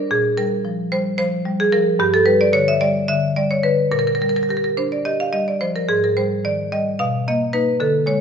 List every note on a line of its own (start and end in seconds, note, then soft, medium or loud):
0.00 0.10 D4 medium
0.11 1.96 A#2 medium
0.11 0.37 G#4 loud
0.37 0.81 G3 medium
0.37 0.89 A#4 loud
0.65 1.08 F3 medium
0.92 1.35 G3 medium
0.92 1.17 C5 loud
1.18 1.62 F3 medium
1.18 1.57 C5 loud
1.46 1.89 G3 medium
1.60 1.73 G#4 loud
1.72 2.00 F3 medium
1.72 1.99 A#4 loud
1.99 3.88 G2 medium
1.99 2.13 G4 loud
2.14 2.27 A4 loud
2.26 2.70 G3 medium
2.26 2.40 B4 loud
2.41 2.54 D5 loud
2.53 2.97 D3 medium
2.53 2.67 C#5 loud
2.68 2.81 E5 loud
2.81 3.25 G3 medium
2.81 3.07 D5 loud
3.08 3.52 D3 medium
3.08 3.35 E5 loud
3.36 3.81 G3 medium
3.36 3.50 D5 loud
3.51 3.64 C#5 medium
3.63 3.92 D3 medium
3.63 3.91 B4 loud
3.91 5.85 A#2 medium
3.91 3.99 A#4 loud
3.99 4.07 A#4 medium
4.07 4.15 A#4 medium
4.15 4.22 A#4 medium
4.21 4.66 G3 medium
4.21 4.29 A#4 medium
4.29 4.36 A#4 medium
4.36 4.43 A#4 medium
4.43 4.50 A#4 medium
4.49 4.94 G4 medium
4.49 4.57 A#4 medium
4.57 4.64 A#4 medium
4.64 4.73 A#4 medium
4.77 5.22 D4 medium
4.77 4.91 C5 medium
4.92 5.06 D5 medium
5.05 5.50 G4 medium
5.05 5.19 D#5 loud
5.20 5.34 F5 loud
5.33 5.78 G3 medium
5.33 5.47 D#5 medium
5.48 5.62 D5 medium
5.61 5.89 F3 medium
5.61 5.75 C5 medium
5.76 5.90 A#4 medium
5.89 6.96 G#2 medium
5.89 6.03 G#4 loud
6.04 6.18 A#4 medium
6.17 6.61 G3 medium
6.17 6.44 C5 medium
6.45 6.89 D#3 medium
6.45 6.71 D5 medium
6.72 7.00 G3 medium
6.72 6.99 D#5 loud
6.99 7.79 B2 medium
6.99 7.26 F5 loud
7.28 7.52 A#3 medium
7.28 7.54 D#5 loud
7.53 7.78 A#3 medium
7.53 7.78 D#4 medium
7.53 7.80 B4 loud
7.80 8.21 D3 medium
7.80 8.07 A4 loud
8.06 8.21 G#3 medium
8.06 8.21 C#5 loud